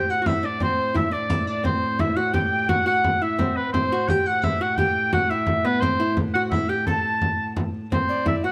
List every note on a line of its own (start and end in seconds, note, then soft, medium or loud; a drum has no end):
0.00 3.71 A2 medium
0.00 0.12 G5 medium
0.09 0.21 F#4 medium
0.09 0.28 F#5 medium
0.09 0.30 F#5 medium
0.09 frame drum soft
0.22 0.27 F#4 medium
0.26 0.45 E4 medium
0.26 0.47 E5 medium
0.26 frame drum medium
0.43 0.61 D4 medium
0.43 0.62 D5 medium
0.43 0.61 D5 medium
0.60 0.97 C4 medium
0.60 0.94 C5 medium
0.60 frame drum medium
0.78 frame drum soft
0.94 1.11 E4 medium
0.94 1.14 E5 medium
0.94 1.13 E5 medium
0.94 frame drum medium
1.11 1.30 D4 medium
1.11 1.47 D5 medium
1.11 1.68 D5 medium
1.11 frame drum soft
1.30 1.47 E4 medium
1.30 frame drum medium
1.47 1.66 D4 medium
1.47 1.64 D5 medium
1.64 2.01 C4 medium
1.64 2.02 C5 medium
1.64 2.01 C5 medium
1.64 frame drum medium
1.83 frame drum soft
1.99 2.18 E4 medium
1.99 2.18 E5 medium
1.99 frame drum medium
2.16 2.33 F#4 medium
2.16 2.36 F#5 medium
2.16 2.33 F#5 medium
2.34 2.69 G4 medium
2.34 2.51 G5 medium
2.34 2.70 G5 medium
2.34 frame drum medium
2.52 2.71 G5 medium
2.69 2.85 F#4 medium
2.69 2.86 F#5 medium
2.69 frame drum medium
2.86 3.22 F#4 medium
2.86 3.24 F#5 medium
2.86 3.24 F#5 loud
3.04 frame drum medium
3.22 3.40 E4 medium
3.22 3.58 E5 medium
3.22 3.40 E5 medium
3.39 3.71 C4 medium
3.39 3.58 C5 medium
3.39 frame drum medium
3.56 3.72 B4 medium
3.56 3.74 B4 medium
3.56 frame drum soft
3.72 7.90 A2 medium
3.72 3.92 C4 medium
3.72 4.10 C5 medium
3.72 4.12 C5 medium
3.72 frame drum medium
3.92 4.10 F#4 medium
3.92 frame drum soft
4.09 4.26 G4 medium
4.09 4.28 G5 medium
4.09 4.27 G5 medium
4.09 frame drum medium
4.26 4.42 F#4 medium
4.26 4.45 F#5 medium
4.26 frame drum soft
4.42 4.61 E4 medium
4.42 4.64 E5 medium
4.42 4.63 E5 medium
4.42 frame drum medium
4.61 4.78 F#4 medium
4.61 4.79 F#5 medium
4.61 4.80 F#5 medium
4.78 5.12 G4 medium
4.78 5.13 G5 medium
4.78 5.16 G5 medium
4.78 frame drum medium
4.95 frame drum soft
5.13 5.31 F#4 medium
5.13 5.31 F#5 medium
5.13 5.34 F#5 medium
5.13 frame drum medium
5.29 5.66 E4 medium
5.29 5.67 E5 medium
5.29 5.69 E5 medium
5.29 frame drum soft
5.47 frame drum medium
5.65 5.82 B3 medium
5.65 5.82 B4 medium
5.65 5.85 B4 medium
5.80 6.01 C4 medium
5.80 6.16 C5 medium
5.80 6.18 C5 medium
5.80 frame drum medium
6.00 6.16 E4 medium
6.17 frame drum medium
6.34 6.53 F#4 medium
6.34 6.42 F#5 medium
6.34 6.52 F#5 medium
6.34 frame drum soft
6.51 6.69 E4 medium
6.51 6.71 E5 medium
6.51 frame drum medium
6.69 6.87 G4 medium
6.69 6.86 G5 medium
6.87 7.53 A4 medium
6.87 7.53 A5 loud
6.87 7.53 A5 medium
6.87 frame drum medium
7.22 frame drum medium
7.57 frame drum medium
7.74 frame drum soft
7.92 8.52 A2 medium
7.92 8.28 C4 medium
7.92 7.98 C5 medium
7.92 8.25 C5 medium
7.92 frame drum medium
8.09 8.45 D5 medium
8.09 frame drum soft
8.26 8.44 E4 medium
8.26 8.35 E5 medium
8.26 frame drum medium
8.43 8.52 F#4 medium
8.43 8.52 F#5 medium